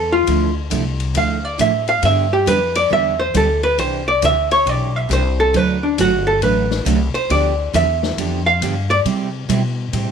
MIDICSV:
0, 0, Header, 1, 6, 480
1, 0, Start_track
1, 0, Key_signature, 0, "major"
1, 0, Tempo, 438917
1, 295, Time_signature, 4, 2, 24, 8
1, 11061, End_track
2, 0, Start_track
2, 0, Title_t, "Hollow-body jazz guitar"
2, 0, Program_c, 0, 26
2, 0, Note_on_c, 0, 69, 79
2, 135, Note_off_c, 0, 69, 0
2, 136, Note_on_c, 0, 65, 88
2, 580, Note_off_c, 0, 65, 0
2, 1284, Note_on_c, 0, 77, 94
2, 1582, Note_off_c, 0, 77, 0
2, 1582, Note_on_c, 0, 74, 105
2, 1737, Note_off_c, 0, 74, 0
2, 1759, Note_on_c, 0, 76, 84
2, 2053, Note_off_c, 0, 76, 0
2, 2064, Note_on_c, 0, 77, 108
2, 2219, Note_off_c, 0, 77, 0
2, 2244, Note_on_c, 0, 76, 93
2, 2536, Note_off_c, 0, 76, 0
2, 2548, Note_on_c, 0, 67, 76
2, 2701, Note_off_c, 0, 67, 0
2, 2710, Note_on_c, 0, 71, 95
2, 3008, Note_off_c, 0, 71, 0
2, 3017, Note_on_c, 0, 74, 100
2, 3176, Note_off_c, 0, 74, 0
2, 3202, Note_on_c, 0, 76, 109
2, 3494, Note_off_c, 0, 76, 0
2, 3494, Note_on_c, 0, 72, 98
2, 3654, Note_off_c, 0, 72, 0
2, 3682, Note_on_c, 0, 69, 88
2, 3972, Note_off_c, 0, 69, 0
2, 3976, Note_on_c, 0, 71, 96
2, 4135, Note_off_c, 0, 71, 0
2, 4150, Note_on_c, 0, 72, 87
2, 4449, Note_off_c, 0, 72, 0
2, 4459, Note_on_c, 0, 74, 96
2, 4617, Note_off_c, 0, 74, 0
2, 4648, Note_on_c, 0, 76, 106
2, 4936, Note_off_c, 0, 76, 0
2, 4940, Note_on_c, 0, 73, 98
2, 5131, Note_off_c, 0, 73, 0
2, 5131, Note_on_c, 0, 74, 85
2, 5427, Note_off_c, 0, 74, 0
2, 5427, Note_on_c, 0, 76, 107
2, 5581, Note_off_c, 0, 76, 0
2, 5609, Note_on_c, 0, 72, 96
2, 5898, Note_off_c, 0, 72, 0
2, 5905, Note_on_c, 0, 69, 98
2, 6084, Note_off_c, 0, 69, 0
2, 6084, Note_on_c, 0, 71, 103
2, 6376, Note_off_c, 0, 71, 0
2, 6377, Note_on_c, 0, 62, 54
2, 6536, Note_off_c, 0, 62, 0
2, 6568, Note_on_c, 0, 66, 93
2, 6856, Note_on_c, 0, 69, 97
2, 6858, Note_off_c, 0, 66, 0
2, 7015, Note_off_c, 0, 69, 0
2, 7033, Note_on_c, 0, 71, 84
2, 7472, Note_off_c, 0, 71, 0
2, 7812, Note_on_c, 0, 72, 92
2, 7972, Note_off_c, 0, 72, 0
2, 7994, Note_on_c, 0, 74, 85
2, 8432, Note_off_c, 0, 74, 0
2, 8480, Note_on_c, 0, 76, 93
2, 9218, Note_off_c, 0, 76, 0
2, 9256, Note_on_c, 0, 77, 105
2, 9700, Note_off_c, 0, 77, 0
2, 9734, Note_on_c, 0, 74, 107
2, 9832, Note_off_c, 0, 74, 0
2, 11061, End_track
3, 0, Start_track
3, 0, Title_t, "Steel-string acoustic guitar"
3, 0, Program_c, 1, 25
3, 290, Note_on_c, 1, 50, 65
3, 295, Note_on_c, 1, 53, 67
3, 301, Note_on_c, 1, 57, 73
3, 310, Note_on_c, 1, 64, 73
3, 535, Note_off_c, 1, 50, 0
3, 538, Note_off_c, 1, 53, 0
3, 541, Note_off_c, 1, 57, 0
3, 545, Note_off_c, 1, 64, 0
3, 767, Note_on_c, 1, 50, 70
3, 774, Note_on_c, 1, 53, 70
3, 778, Note_on_c, 1, 57, 73
3, 785, Note_on_c, 1, 64, 86
3, 900, Note_off_c, 1, 50, 0
3, 903, Note_off_c, 1, 53, 0
3, 905, Note_off_c, 1, 57, 0
3, 908, Note_off_c, 1, 64, 0
3, 1248, Note_on_c, 1, 50, 60
3, 1258, Note_on_c, 1, 53, 55
3, 1263, Note_on_c, 1, 57, 64
3, 1266, Note_on_c, 1, 64, 70
3, 1494, Note_off_c, 1, 50, 0
3, 1499, Note_off_c, 1, 53, 0
3, 1502, Note_off_c, 1, 57, 0
3, 1503, Note_off_c, 1, 64, 0
3, 1727, Note_on_c, 1, 50, 72
3, 1735, Note_on_c, 1, 53, 73
3, 1741, Note_on_c, 1, 57, 76
3, 1743, Note_on_c, 1, 64, 88
3, 1860, Note_off_c, 1, 50, 0
3, 1864, Note_off_c, 1, 53, 0
3, 1867, Note_off_c, 1, 57, 0
3, 1868, Note_off_c, 1, 64, 0
3, 2209, Note_on_c, 1, 50, 69
3, 2214, Note_on_c, 1, 55, 66
3, 2216, Note_on_c, 1, 59, 68
3, 2222, Note_on_c, 1, 62, 69
3, 2222, Note_on_c, 1, 67, 64
3, 2455, Note_off_c, 1, 50, 0
3, 2457, Note_off_c, 1, 55, 0
3, 2458, Note_off_c, 1, 59, 0
3, 2461, Note_off_c, 1, 62, 0
3, 2461, Note_off_c, 1, 67, 0
3, 2690, Note_on_c, 1, 50, 77
3, 2697, Note_on_c, 1, 55, 82
3, 2697, Note_on_c, 1, 59, 79
3, 2702, Note_on_c, 1, 62, 78
3, 2707, Note_on_c, 1, 67, 74
3, 2822, Note_off_c, 1, 50, 0
3, 2825, Note_off_c, 1, 55, 0
3, 2825, Note_off_c, 1, 59, 0
3, 2828, Note_off_c, 1, 62, 0
3, 2830, Note_off_c, 1, 67, 0
3, 3169, Note_on_c, 1, 50, 58
3, 3177, Note_on_c, 1, 59, 63
3, 3178, Note_on_c, 1, 55, 60
3, 3183, Note_on_c, 1, 67, 62
3, 3185, Note_on_c, 1, 62, 61
3, 3415, Note_off_c, 1, 50, 0
3, 3419, Note_off_c, 1, 59, 0
3, 3420, Note_off_c, 1, 55, 0
3, 3422, Note_off_c, 1, 67, 0
3, 3423, Note_off_c, 1, 62, 0
3, 3652, Note_on_c, 1, 50, 72
3, 3655, Note_on_c, 1, 55, 75
3, 3661, Note_on_c, 1, 59, 71
3, 3662, Note_on_c, 1, 62, 71
3, 3668, Note_on_c, 1, 67, 78
3, 3783, Note_off_c, 1, 50, 0
3, 3784, Note_off_c, 1, 55, 0
3, 3788, Note_off_c, 1, 59, 0
3, 3788, Note_off_c, 1, 62, 0
3, 3791, Note_off_c, 1, 67, 0
3, 4132, Note_on_c, 1, 48, 60
3, 4137, Note_on_c, 1, 52, 68
3, 4146, Note_on_c, 1, 62, 69
3, 4150, Note_on_c, 1, 67, 77
3, 4377, Note_off_c, 1, 48, 0
3, 4379, Note_off_c, 1, 52, 0
3, 4384, Note_off_c, 1, 62, 0
3, 4386, Note_off_c, 1, 67, 0
3, 4612, Note_on_c, 1, 52, 72
3, 4613, Note_on_c, 1, 48, 77
3, 4621, Note_on_c, 1, 62, 80
3, 4629, Note_on_c, 1, 67, 78
3, 4743, Note_off_c, 1, 48, 0
3, 4743, Note_off_c, 1, 52, 0
3, 4747, Note_off_c, 1, 62, 0
3, 4751, Note_off_c, 1, 67, 0
3, 5095, Note_on_c, 1, 48, 60
3, 5101, Note_on_c, 1, 52, 59
3, 5107, Note_on_c, 1, 62, 64
3, 5109, Note_on_c, 1, 67, 68
3, 5338, Note_off_c, 1, 48, 0
3, 5341, Note_off_c, 1, 52, 0
3, 5345, Note_off_c, 1, 62, 0
3, 5345, Note_off_c, 1, 67, 0
3, 5564, Note_on_c, 1, 48, 76
3, 5568, Note_on_c, 1, 52, 75
3, 5573, Note_on_c, 1, 62, 73
3, 5578, Note_on_c, 1, 67, 84
3, 5699, Note_off_c, 1, 48, 0
3, 5701, Note_off_c, 1, 52, 0
3, 5703, Note_off_c, 1, 62, 0
3, 5706, Note_off_c, 1, 67, 0
3, 6051, Note_on_c, 1, 50, 63
3, 6056, Note_on_c, 1, 54, 72
3, 6058, Note_on_c, 1, 57, 72
3, 6062, Note_on_c, 1, 62, 75
3, 6066, Note_on_c, 1, 66, 71
3, 6296, Note_off_c, 1, 50, 0
3, 6299, Note_off_c, 1, 54, 0
3, 6300, Note_off_c, 1, 57, 0
3, 6301, Note_off_c, 1, 62, 0
3, 6304, Note_off_c, 1, 66, 0
3, 6538, Note_on_c, 1, 50, 71
3, 6541, Note_on_c, 1, 54, 70
3, 6544, Note_on_c, 1, 57, 76
3, 6551, Note_on_c, 1, 62, 80
3, 6551, Note_on_c, 1, 66, 76
3, 6666, Note_off_c, 1, 50, 0
3, 6667, Note_off_c, 1, 54, 0
3, 6669, Note_off_c, 1, 57, 0
3, 6672, Note_off_c, 1, 62, 0
3, 6672, Note_off_c, 1, 66, 0
3, 7024, Note_on_c, 1, 50, 58
3, 7028, Note_on_c, 1, 54, 61
3, 7030, Note_on_c, 1, 57, 62
3, 7033, Note_on_c, 1, 62, 65
3, 7037, Note_on_c, 1, 66, 65
3, 7263, Note_off_c, 1, 50, 0
3, 7264, Note_off_c, 1, 54, 0
3, 7266, Note_off_c, 1, 57, 0
3, 7267, Note_off_c, 1, 62, 0
3, 7269, Note_off_c, 1, 66, 0
3, 7489, Note_on_c, 1, 50, 79
3, 7498, Note_on_c, 1, 54, 74
3, 7502, Note_on_c, 1, 57, 83
3, 7506, Note_on_c, 1, 62, 74
3, 7506, Note_on_c, 1, 66, 85
3, 7621, Note_off_c, 1, 50, 0
3, 7625, Note_off_c, 1, 54, 0
3, 7628, Note_off_c, 1, 57, 0
3, 7630, Note_off_c, 1, 62, 0
3, 7630, Note_off_c, 1, 66, 0
3, 7977, Note_on_c, 1, 53, 66
3, 7978, Note_on_c, 1, 50, 60
3, 7984, Note_on_c, 1, 59, 69
3, 7989, Note_on_c, 1, 62, 72
3, 7994, Note_on_c, 1, 67, 74
3, 8219, Note_off_c, 1, 50, 0
3, 8219, Note_off_c, 1, 53, 0
3, 8222, Note_off_c, 1, 59, 0
3, 8225, Note_off_c, 1, 62, 0
3, 8227, Note_off_c, 1, 67, 0
3, 8457, Note_on_c, 1, 50, 70
3, 8460, Note_on_c, 1, 53, 73
3, 8468, Note_on_c, 1, 59, 75
3, 8470, Note_on_c, 1, 62, 82
3, 8475, Note_on_c, 1, 67, 81
3, 8585, Note_off_c, 1, 50, 0
3, 8587, Note_off_c, 1, 53, 0
3, 8591, Note_off_c, 1, 59, 0
3, 8591, Note_off_c, 1, 62, 0
3, 8594, Note_off_c, 1, 67, 0
3, 8940, Note_on_c, 1, 50, 59
3, 8947, Note_on_c, 1, 53, 55
3, 8949, Note_on_c, 1, 59, 57
3, 8954, Note_on_c, 1, 62, 68
3, 8956, Note_on_c, 1, 67, 64
3, 9180, Note_off_c, 1, 50, 0
3, 9184, Note_off_c, 1, 53, 0
3, 9185, Note_off_c, 1, 59, 0
3, 9187, Note_off_c, 1, 62, 0
3, 9188, Note_off_c, 1, 67, 0
3, 9425, Note_on_c, 1, 50, 75
3, 9428, Note_on_c, 1, 53, 69
3, 9430, Note_on_c, 1, 59, 77
3, 9434, Note_on_c, 1, 62, 81
3, 9438, Note_on_c, 1, 67, 88
3, 9549, Note_off_c, 1, 50, 0
3, 9550, Note_off_c, 1, 53, 0
3, 9551, Note_off_c, 1, 59, 0
3, 9553, Note_off_c, 1, 62, 0
3, 9555, Note_off_c, 1, 67, 0
3, 9902, Note_on_c, 1, 55, 69
3, 9903, Note_on_c, 1, 48, 68
3, 9909, Note_on_c, 1, 60, 66
3, 9912, Note_on_c, 1, 67, 71
3, 9914, Note_on_c, 1, 64, 67
3, 10141, Note_off_c, 1, 55, 0
3, 10142, Note_off_c, 1, 48, 0
3, 10144, Note_off_c, 1, 60, 0
3, 10146, Note_off_c, 1, 67, 0
3, 10147, Note_off_c, 1, 64, 0
3, 10374, Note_on_c, 1, 48, 73
3, 10377, Note_on_c, 1, 55, 78
3, 10383, Note_on_c, 1, 60, 72
3, 10389, Note_on_c, 1, 64, 74
3, 10390, Note_on_c, 1, 67, 75
3, 10503, Note_off_c, 1, 48, 0
3, 10504, Note_off_c, 1, 55, 0
3, 10508, Note_off_c, 1, 60, 0
3, 10511, Note_off_c, 1, 64, 0
3, 10511, Note_off_c, 1, 67, 0
3, 10857, Note_on_c, 1, 48, 61
3, 10862, Note_on_c, 1, 55, 59
3, 10866, Note_on_c, 1, 60, 61
3, 10868, Note_on_c, 1, 64, 72
3, 10870, Note_on_c, 1, 67, 65
3, 11061, Note_off_c, 1, 48, 0
3, 11061, Note_off_c, 1, 55, 0
3, 11061, Note_off_c, 1, 60, 0
3, 11061, Note_off_c, 1, 64, 0
3, 11061, Note_off_c, 1, 67, 0
3, 11061, End_track
4, 0, Start_track
4, 0, Title_t, "Upright bass"
4, 0, Program_c, 2, 32
4, 0, Note_on_c, 2, 40, 96
4, 283, Note_off_c, 2, 40, 0
4, 301, Note_on_c, 2, 38, 86
4, 765, Note_off_c, 2, 38, 0
4, 782, Note_on_c, 2, 36, 102
4, 1245, Note_off_c, 2, 36, 0
4, 1257, Note_on_c, 2, 38, 85
4, 1723, Note_off_c, 2, 38, 0
4, 1739, Note_on_c, 2, 45, 94
4, 2204, Note_off_c, 2, 45, 0
4, 2217, Note_on_c, 2, 43, 89
4, 2683, Note_off_c, 2, 43, 0
4, 2696, Note_on_c, 2, 41, 90
4, 3162, Note_off_c, 2, 41, 0
4, 3177, Note_on_c, 2, 40, 85
4, 3643, Note_off_c, 2, 40, 0
4, 3657, Note_on_c, 2, 38, 86
4, 4123, Note_off_c, 2, 38, 0
4, 4137, Note_on_c, 2, 36, 84
4, 4603, Note_off_c, 2, 36, 0
4, 4615, Note_on_c, 2, 38, 88
4, 5082, Note_off_c, 2, 38, 0
4, 5092, Note_on_c, 2, 35, 85
4, 5560, Note_off_c, 2, 35, 0
4, 5577, Note_on_c, 2, 36, 101
4, 6043, Note_off_c, 2, 36, 0
4, 6059, Note_on_c, 2, 38, 81
4, 6524, Note_off_c, 2, 38, 0
4, 6540, Note_on_c, 2, 31, 94
4, 7004, Note_off_c, 2, 31, 0
4, 7020, Note_on_c, 2, 33, 82
4, 7484, Note_off_c, 2, 33, 0
4, 7498, Note_on_c, 2, 36, 95
4, 7789, Note_off_c, 2, 36, 0
4, 7982, Note_on_c, 2, 38, 89
4, 8445, Note_off_c, 2, 38, 0
4, 8460, Note_on_c, 2, 40, 99
4, 8924, Note_off_c, 2, 40, 0
4, 8938, Note_on_c, 2, 41, 83
4, 9403, Note_off_c, 2, 41, 0
4, 9419, Note_on_c, 2, 43, 94
4, 9883, Note_off_c, 2, 43, 0
4, 9898, Note_on_c, 2, 48, 84
4, 10363, Note_off_c, 2, 48, 0
4, 10378, Note_on_c, 2, 47, 102
4, 10843, Note_off_c, 2, 47, 0
4, 10857, Note_on_c, 2, 45, 87
4, 11061, Note_off_c, 2, 45, 0
4, 11061, End_track
5, 0, Start_track
5, 0, Title_t, "Muted upright bass strokes"
5, 7816, Note_on_c, 9, 29, 38
5, 7926, Note_off_c, 9, 29, 0
5, 11061, End_track
6, 0, Start_track
6, 0, Title_t, "Drums"
6, 297, Note_on_c, 9, 51, 68
6, 407, Note_off_c, 9, 51, 0
6, 775, Note_on_c, 9, 44, 56
6, 775, Note_on_c, 9, 51, 73
6, 885, Note_off_c, 9, 44, 0
6, 885, Note_off_c, 9, 51, 0
6, 1091, Note_on_c, 9, 51, 51
6, 1200, Note_off_c, 9, 51, 0
6, 1253, Note_on_c, 9, 51, 73
6, 1363, Note_off_c, 9, 51, 0
6, 1739, Note_on_c, 9, 44, 53
6, 1739, Note_on_c, 9, 51, 74
6, 1848, Note_off_c, 9, 44, 0
6, 1848, Note_off_c, 9, 51, 0
6, 2049, Note_on_c, 9, 51, 46
6, 2158, Note_off_c, 9, 51, 0
6, 2214, Note_on_c, 9, 51, 67
6, 2324, Note_off_c, 9, 51, 0
6, 2702, Note_on_c, 9, 44, 62
6, 2702, Note_on_c, 9, 51, 74
6, 2811, Note_off_c, 9, 44, 0
6, 2811, Note_off_c, 9, 51, 0
6, 3010, Note_on_c, 9, 51, 77
6, 3119, Note_off_c, 9, 51, 0
6, 3657, Note_on_c, 9, 44, 64
6, 3657, Note_on_c, 9, 51, 75
6, 3766, Note_off_c, 9, 44, 0
6, 3766, Note_off_c, 9, 51, 0
6, 3970, Note_on_c, 9, 51, 48
6, 4080, Note_off_c, 9, 51, 0
6, 4138, Note_on_c, 9, 51, 67
6, 4248, Note_off_c, 9, 51, 0
6, 4616, Note_on_c, 9, 44, 66
6, 4616, Note_on_c, 9, 51, 73
6, 4725, Note_off_c, 9, 44, 0
6, 4725, Note_off_c, 9, 51, 0
6, 4933, Note_on_c, 9, 51, 53
6, 5042, Note_off_c, 9, 51, 0
6, 5104, Note_on_c, 9, 51, 65
6, 5213, Note_off_c, 9, 51, 0
6, 5585, Note_on_c, 9, 44, 65
6, 5585, Note_on_c, 9, 51, 69
6, 5695, Note_off_c, 9, 44, 0
6, 5695, Note_off_c, 9, 51, 0
6, 6059, Note_on_c, 9, 51, 64
6, 6168, Note_off_c, 9, 51, 0
6, 6541, Note_on_c, 9, 44, 64
6, 6541, Note_on_c, 9, 51, 77
6, 6650, Note_off_c, 9, 44, 0
6, 6650, Note_off_c, 9, 51, 0
6, 7019, Note_on_c, 9, 51, 64
6, 7129, Note_off_c, 9, 51, 0
6, 7335, Note_on_c, 9, 38, 47
6, 7444, Note_off_c, 9, 38, 0
6, 7503, Note_on_c, 9, 44, 61
6, 7503, Note_on_c, 9, 51, 79
6, 7612, Note_off_c, 9, 44, 0
6, 7612, Note_off_c, 9, 51, 0
6, 7817, Note_on_c, 9, 51, 51
6, 7926, Note_off_c, 9, 51, 0
6, 7984, Note_on_c, 9, 51, 70
6, 8093, Note_off_c, 9, 51, 0
6, 8465, Note_on_c, 9, 44, 56
6, 8465, Note_on_c, 9, 51, 74
6, 8574, Note_off_c, 9, 44, 0
6, 8574, Note_off_c, 9, 51, 0
6, 8781, Note_on_c, 9, 38, 49
6, 8890, Note_off_c, 9, 38, 0
6, 8946, Note_on_c, 9, 51, 70
6, 9055, Note_off_c, 9, 51, 0
6, 9425, Note_on_c, 9, 44, 54
6, 9425, Note_on_c, 9, 51, 75
6, 9534, Note_off_c, 9, 44, 0
6, 9534, Note_off_c, 9, 51, 0
6, 9739, Note_on_c, 9, 51, 51
6, 9848, Note_off_c, 9, 51, 0
6, 9902, Note_on_c, 9, 51, 66
6, 10011, Note_off_c, 9, 51, 0
6, 10383, Note_on_c, 9, 44, 52
6, 10383, Note_on_c, 9, 51, 78
6, 10493, Note_off_c, 9, 44, 0
6, 10493, Note_off_c, 9, 51, 0
6, 10861, Note_on_c, 9, 51, 68
6, 10970, Note_off_c, 9, 51, 0
6, 11061, End_track
0, 0, End_of_file